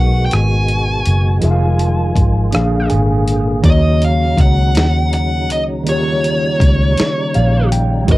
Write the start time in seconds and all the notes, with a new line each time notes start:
Already playing: B1 B2 G#3 D#4 F#4 A#4 B4 F#5
0.26 G5
0.31 G#1 G#5, cross-stick, closed hi-hat
0.68 closed hi-hat
1.05 F#1, closed hi-hat
1.40 F1 D#3 F3 D#4 F4 G#4, closed hi-hat
1.45 E5
1.51 F5
1.79 closed hi-hat
2.16 G#1, kick, closed hi-hat
2.51 A#1 A#2 D3 A#3 D4 G#4 F5, cross-stick, closed hi-hat
2.90 G#1 G#5, closed hi-hat
3.28 closed hi-hat
3.60 C#3 D#3 F#3 A#3 D#4, kick, closed hi-hat
3.64 D#2 D#4 F#4 D#5
3.69 C#5
4.02 F5, closed hi-hat
4.38 C#2 F#5, kick, closed hi-hat
4.75 D#2, snare, closed hi-hat
5.13 F#5, closed hi-hat
5.50 C#2 D#5, closed hi-hat
5.84 D#3 G3 A#3 F4, closed hi-hat
5.88 D#2 G4 C#5
6.24 closed hi-hat
6.60 C#2, kick, closed hi-hat
6.97 muted fingered electric bass stroke, snare, closed hi-hat
7.34 A#1 F5, closed hi-hat
7.72 G5, closed hi-hat
8.04 G#3 D#4, kick, closed hi-hat
8.09 G#1 B2 F#4 A#4 D#5
8.13 B4